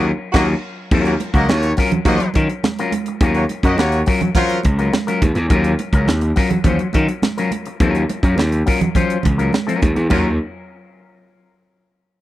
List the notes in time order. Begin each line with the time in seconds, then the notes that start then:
Already playing: D#2 F#3 C#4 F4 A#4
0.32 D#2 F#3 A#3 C#4 F4 F#4 A#4 D#5, kick, snare, crash
0.91 D#2 F#3 C#4 F4 A#4, kick, crash
1.05 A#3 F#4 C#5, closed hi-hat
1.20 muted clean electric guitar stroke, closed hi-hat, muted conga
1.34 C#2 F#3 A#3 C#4 F4 F#4 A#4 D#5, kick, closed hi-hat
1.48 D#2 A#3 F#4 C#5, muted clean electric guitar stroke, snare, high conga
1.63 muted clean electric guitar stroke, closed hi-hat
1.77 F#3 C#4 F4 A#4, kick, snare, open hi-hat
1.92 muted clean electric guitar stroke, closed hi-hat, low conga
2.05 D#2 F#3 A#3 C#4 F4 F#4 C5 D#5, kick, closed hi-hat, muted conga, low conga
2.20 muted clean electric guitar stroke, closed hi-hat
2.34 D#3 F#3 C#4 F4 A#4, kick, closed hi-hat, muted conga
2.49 muted clean electric guitar stroke, closed hi-hat
2.64 muted clean electric guitar stroke, snare, high conga
2.79 F#3 C#4 F4 A#4, closed hi-hat
2.92 muted clean electric guitar stroke, closed hi-hat, high conga
3.06 muted clean electric guitar stroke, closed hi-hat
3.21 D#2 F#3 C#4 F4 A#4, kick, closed hi-hat, muted conga
3.35 A#3 F#4 C#5, closed hi-hat
3.49 muted clean electric guitar stroke, closed hi-hat, muted conga
3.63 F#2 F#3 A#3 C#4 F4 F#4 A#4 D#5, kick, closed hi-hat
3.78 D#2 A#3 F#4 C#5, muted clean electric guitar stroke, snare, high conga
3.92 muted clean electric guitar stroke, closed hi-hat
4.06 F#3 C#4 F4 A#4, kick, open hi-hat
4.21 muted clean electric guitar stroke, closed hi-hat, low conga
4.35 F#3 C#4 F4 A#4 C5, kick, closed hi-hat, muted conga, low conga
4.49 closed hi-hat
4.63 C#2, muted clean electric guitar stroke, kick, closed hi-hat, muted conga
4.79 F#3 C#4 F4 A#4, closed hi-hat
4.93 muted clean electric guitar stroke, snare, high conga
5.07 F#3 C#4 F4 A#4, closed hi-hat
5.22 D#2, muted clean electric guitar stroke, kick, closed hi-hat, high conga
5.35 E2, muted clean electric guitar stroke, closed hi-hat
5.50 D#2 F#3 C#4 F4 A#4, kick, closed hi-hat, muted conga
5.64 closed hi-hat
5.79 muted clean electric guitar stroke, closed hi-hat, muted conga
5.93 C#2 F#3 C#4 F4 A#4, kick, closed hi-hat
6.08 D#2, muted clean electric guitar stroke, snare, high conga
6.21 muted clean electric guitar stroke, closed hi-hat
6.36 F#3 C#4 F4 A#4, kick, snare, open hi-hat
6.50 muted clean electric guitar stroke, closed hi-hat, low conga
6.64 D#2 F#3 C#4 F4 C5, kick, closed hi-hat, muted conga, low conga
6.79 muted clean electric guitar stroke, closed hi-hat
6.93 D#3 F#3 C#4 F4 A#4, kick, closed hi-hat, muted conga
7.08 muted clean electric guitar stroke, closed hi-hat
7.22 muted clean electric guitar stroke, snare, high conga
7.38 F#3 C#4 F4 A#4, closed hi-hat
7.51 muted clean electric guitar stroke, closed hi-hat, high conga
7.66 muted clean electric guitar stroke, closed hi-hat
7.80 D#2 F#3 C#4 F4 A#4, kick, closed hi-hat, muted conga
7.95 closed hi-hat
8.09 muted clean electric guitar stroke, closed hi-hat, muted conga
8.23 F#2 F#3 C#4 F4 A#4, kick, closed hi-hat
8.37 D#2, muted clean electric guitar stroke, snare, high conga
8.52 muted clean electric guitar stroke, closed hi-hat
8.66 F#3 C#4 F4 A#4, kick, open hi-hat
8.81 muted clean electric guitar stroke, closed hi-hat, low conga
8.95 F#3 C#4 F4 C5, kick, closed hi-hat, muted conga, low conga
9.10 closed hi-hat
9.23 C#2, muted clean electric guitar stroke, kick, closed hi-hat, muted conga, low conga
9.38 F#3 C#4 F4 A#4, closed hi-hat
9.52 muted clean electric guitar stroke, snare, high conga
9.67 F#3 C#4 F4 A#4, closed hi-hat
9.82 D#2, muted clean electric guitar stroke, kick, closed hi-hat, high conga
9.96 E2, muted clean electric guitar stroke, closed hi-hat
10.10 D#2 F#3 C#4 F4 A#4, kick, floor tom, splash, muted conga